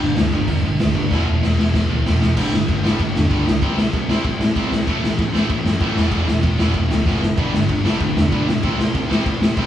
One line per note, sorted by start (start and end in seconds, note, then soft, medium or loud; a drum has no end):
0.00 0.13 G1 medium
0.00 0.16 G2 loud
0.00 0.16 G2 medium
0.00 0.16 D3 medium
0.00 0.17 G3 loud
0.00 0.18 B3 loud
0.00 0.18 D4 loud
0.16 0.29 D2 loud
0.16 0.34 G2 medium
0.16 0.31 G2 medium
0.16 0.33 D3 medium
0.16 0.32 D3 medium
0.16 0.33 G3 loud
0.16 0.33 B3 medium
0.16 0.31 D4 medium
0.16 snare loud
0.16 open hi-hat medium
0.33 0.44 G1 medium
0.33 0.47 G2 medium
0.33 0.46 G2 medium
0.33 0.47 D3 medium
0.33 0.47 G3 medium
0.33 0.49 B3 medium
0.33 0.48 D4 medium
0.47 0.60 E1 medium
0.47 0.78 G2 medium
0.47 0.63 G2 medium
0.47 0.79 D3 loud
0.47 0.63 D3 medium
0.47 0.79 G3 loud
0.47 0.81 B3 loud
0.47 0.81 D4 loud
0.47 kick loud
0.47 open hi-hat medium
0.64 0.76 G1 medium
0.64 0.79 G2 medium
0.64 0.79 D3 medium
0.79 0.92 D2 loud
0.79 0.96 G2 medium
0.79 0.94 G2 medium
0.79 0.95 D3 medium
0.79 0.94 D3 medium
0.79 0.95 G3 loud
0.79 0.95 B3 medium
0.79 0.94 D4 loud
0.79 snare loud
0.79 open hi-hat medium
0.95 1.07 G2 medium
0.95 1.10 G2 medium
0.95 1.11 G2 medium
0.95 1.10 D3 medium
0.95 1.10 G3 medium
0.95 1.11 B3 loud
0.95 1.10 D4 loud
0.95 kick medium
1.11 1.22 E1 medium
1.11 1.27 E2 medium
1.11 1.27 B2 medium
1.11 1.42 E3 loud
1.11 1.28 E3 loud
1.11 1.42 G#3 medium
1.11 1.43 B3 loud
1.11 1.43 E4 loud
1.11 kick loud
1.11 snare medium
1.28 1.39 E1 medium
1.28 1.42 E2 medium
1.28 1.42 B2 medium
1.43 1.55 E1 loud
1.43 1.57 E2 medium
1.43 1.57 B2 medium
1.43 1.58 E3 medium
1.43 1.58 G#3 medium
1.43 1.57 B3 loud
1.43 1.57 E4 medium
1.43 snare medium
1.58 1.70 E1 medium
1.58 1.73 E2 medium
1.58 1.73 B2 medium
1.58 1.72 E3 medium
1.58 1.73 G#3 medium
1.58 1.73 B3 medium
1.58 1.74 E4 medium
1.58 snare medium
1.74 1.85 E1 loud
1.74 1.88 E2 medium
1.74 1.89 B2 medium
1.74 2.04 E3 medium
1.74 2.05 G#3 loud
1.74 2.06 B3 loud
1.74 2.06 E4 loud
1.74 kick loud
1.74 snare medium
1.91 2.02 D2 medium
1.91 2.04 E2 medium
1.91 2.04 B2 medium
2.06 2.17 E1 medium
2.06 2.20 E2 medium
2.06 2.20 B2 medium
2.06 2.22 E3 medium
2.06 2.21 G#3 medium
2.06 2.20 B3 medium
2.06 2.19 E4 medium
2.06 snare loud
2.21 2.33 E1 medium
2.21 2.36 E2 medium
2.21 2.36 B2 medium
2.21 2.37 E3 medium
2.21 2.36 G#3 medium
2.21 2.36 B3 loud
2.21 2.36 E4 loud
2.21 snare medium
2.36 2.49 G1 medium
2.36 2.82 G2 medium
2.36 2.52 G2 medium
2.36 2.83 D3 medium
2.36 2.52 D3 medium
2.36 2.86 G3 medium
2.36 2.52 G3 loud
2.36 2.84 B3 loud
2.36 2.83 D4 loud
2.36 kick loud
2.36 crash loud
2.36 crash medium
2.53 2.66 G1 medium
2.53 2.66 G2 medium
2.53 2.67 D3 medium
2.53 snare loud
2.68 2.81 G1 medium
2.68 2.82 G2 medium
2.68 2.82 D3 medium
2.68 kick loud
2.68 crash medium
2.83 2.97 G1 medium
2.83 2.98 G2 medium
2.83 2.99 D3 medium
2.83 3.60 D3 medium
2.83 2.99 G3 medium
2.83 3.61 G3 medium
2.83 3.62 B3 medium
2.83 3.61 D4 medium
2.83 snare loud
2.88 3.63 G2 medium
2.99 3.12 G1 medium
2.99 3.14 G2 medium
2.99 3.14 D3 medium
2.99 kick loud
2.99 crash medium
3.15 3.28 E2 medium
3.15 3.29 G2 medium
3.15 3.29 D3 medium
3.15 snare loud
3.31 3.55 C#2 medium
3.31 3.45 G2 medium
3.31 3.46 D3 loud
3.31 3.46 G3 loud
3.31 kick loud
3.31 crash medium
3.47 3.61 G2 medium
3.47 3.61 D3 medium
3.47 snare loud
3.61 3.74 C2 medium
3.61 4.07 C3 medium
3.61 3.77 C3 medium
3.61 4.08 G3 medium
3.61 3.77 G3 medium
3.61 4.09 C4 loud
3.61 3.78 C4 loud
3.61 4.09 E4 loud
3.61 kick loud
3.61 crash medium
3.78 3.90 C2 medium
3.78 3.92 C3 medium
3.78 3.93 G3 medium
3.78 snare loud
3.93 4.06 C2 loud
3.93 4.08 C3 medium
3.93 4.08 G3 medium
3.93 kick loud
3.93 crash medium
4.09 4.21 C2 medium
4.09 4.23 C3 medium
4.09 4.87 C3 medium
4.09 4.24 G3 medium
4.09 4.88 G3 medium
4.09 4.24 C4 loud
4.09 4.87 C4 medium
4.09 4.89 E4 medium
4.09 snare loud
4.24 4.37 C2 medium
4.24 4.39 C3 medium
4.24 4.39 G3 medium
4.24 kick loud
4.24 crash medium
4.41 4.53 A2 medium
4.41 4.54 C3 medium
4.41 4.55 G3 medium
4.41 snare loud
4.56 4.81 C2 medium
4.56 4.70 C3 medium
4.56 4.70 G3 loud
4.56 4.71 C4 loud
4.56 kick loud
4.56 crash medium
4.71 4.86 C3 medium
4.71 4.85 G3 medium
4.71 snare loud
4.86 5.00 A1 medium
4.86 5.33 A2 loud
4.86 5.01 A2 medium
4.86 5.01 E3 medium
4.86 5.36 E3 loud
4.86 5.02 A3 loud
4.86 5.34 A3 medium
4.86 5.33 C#4 loud
4.86 5.32 E4 loud
4.86 kick loud
4.86 crash medium
5.02 5.15 A1 medium
5.02 5.17 A2 medium
5.02 5.17 E3 medium
5.02 snare loud
5.18 5.31 A1 medium
5.18 5.32 A2 medium
5.18 5.33 E3 medium
5.18 kick loud
5.18 crash medium
5.32 5.46 A1 medium
5.32 5.49 A2 medium
5.32 5.49 E3 medium
5.32 5.94 E3 medium
5.32 5.96 A3 medium
5.32 5.49 A3 loud
5.32 5.96 C#4 medium
5.32 5.95 E4 medium
5.32 snare loud
5.37 5.97 A2 medium
5.50 5.62 A1 medium
5.50 5.64 A2 medium
5.50 5.64 E3 medium
5.50 kick loud
5.50 crash medium
5.64 5.77 F#2 medium
5.64 5.79 A2 medium
5.64 5.80 E3 medium
5.64 snare loud
5.80 5.93 A1 medium
5.80 5.95 A2 medium
5.80 5.96 E3 loud
5.80 5.96 A3 loud
5.80 kick loud
5.80 crash medium
5.95 6.09 E1 medium
5.95 6.10 E2 medium
5.95 6.11 B2 loud
5.95 6.41 E3 loud
5.95 6.12 E3 loud
5.95 6.43 G#3 loud
5.95 6.45 B3 loud
5.95 6.44 E4 loud
5.95 snare loud
6.11 6.25 E1 medium
6.11 6.27 E2 medium
6.11 6.27 B2 medium
6.11 6.28 E3 loud
6.11 kick loud
6.11 crash medium
6.27 6.40 E1 medium
6.27 6.42 E2 medium
6.27 6.42 B2 medium
6.27 snare loud
6.43 6.56 E1 loud
6.43 6.57 E2 medium
6.43 6.57 B2 medium
6.43 7.21 E3 medium
6.43 7.21 G#3 medium
6.43 7.22 B3 medium
6.43 7.23 E4 medium
6.43 kick loud
6.43 crash medium
6.58 6.71 E1 medium
6.58 6.73 E2 medium
6.58 6.74 B2 medium
6.58 6.74 E3 loud
6.58 snare loud
6.74 6.88 E1 medium
6.74 6.89 E2 medium
6.74 6.89 B2 medium
6.74 kick loud
6.74 crash medium
6.91 7.03 D2 medium
6.91 7.05 E2 medium
6.91 7.05 B2 medium
6.91 snare loud
7.06 7.31 F#1 medium
7.06 7.21 E2 medium
7.06 7.21 B2 loud
7.06 7.22 E3 loud
7.06 kick loud
7.06 snare medium
7.22 7.36 E2 medium
7.22 7.36 B2 medium
7.22 snare medium
7.37 7.50 G1 medium
7.37 7.84 G2 medium
7.37 7.52 G2 medium
7.37 7.84 D3 medium
7.37 7.53 D3 medium
7.37 7.86 G3 medium
7.37 7.53 G3 medium
7.37 7.84 B3 medium
7.37 7.83 D4 loud
7.37 kick loud
7.37 crash medium
7.53 7.67 G1 medium
7.53 7.68 G2 medium
7.53 7.68 D3 medium
7.53 snare loud
7.69 7.82 G1 loud
7.69 7.83 G2 medium
7.69 7.83 D3 medium
7.69 kick loud
7.69 crash medium
7.84 7.98 G1 medium
7.84 8.00 G2 medium
7.84 8.64 G2 medium
7.84 8.00 D3 medium
7.84 8.63 D3 medium
7.84 8.63 G3 medium
7.84 8.01 G3 loud
7.84 8.63 B3 medium
7.84 8.62 D4 medium
7.84 snare loud
8.00 8.13 G1 medium
8.00 8.15 G2 medium
8.00 8.15 D3 medium
8.00 kick loud
8.00 crash medium
8.17 8.29 E2 medium
8.17 8.31 G2 medium
8.17 8.31 D3 medium
8.17 snare loud
8.32 8.57 B1 medium
8.32 8.46 G2 loud
8.32 8.46 D3 medium
8.32 8.47 G3 loud
8.32 kick loud
8.32 crash medium
8.47 8.61 G2 medium
8.47 8.62 D3 medium
8.47 snare loud
8.62 8.76 C2 medium
8.62 8.78 C3 medium
8.62 9.10 C3 medium
8.62 8.78 G3 medium
8.62 9.10 G3 loud
8.62 8.79 C4 loud
8.62 9.10 C4 loud
8.62 kick loud
8.62 crash medium
8.67 9.09 E4 loud
8.79 8.92 C2 medium
8.79 8.93 C3 medium
8.79 8.94 G3 medium
8.79 snare loud
8.94 9.07 C2 loud
8.94 9.08 C3 medium
8.94 9.09 G3 medium
8.94 kick loud
8.94 crash medium
9.10 9.23 C2 medium
9.10 9.25 C3 medium
9.10 9.66 C3 medium
9.10 9.25 G3 loud
9.10 9.66 G3 medium
9.10 9.66 C4 medium
9.10 9.26 C4 loud
9.10 9.66 E4 medium
9.10 snare loud
9.26 9.39 C2 medium
9.26 9.40 C3 medium
9.26 9.40 G3 medium
9.26 kick loud
9.26 crash medium
9.41 9.54 A2 loud
9.41 9.56 C3 medium
9.41 9.56 G3 medium
9.41 snare loud
9.57 9.66 C2 loud
9.57 9.66 C3 medium
9.57 9.66 G3 loud
9.57 9.66 C4 loud
9.57 kick loud
9.57 crash medium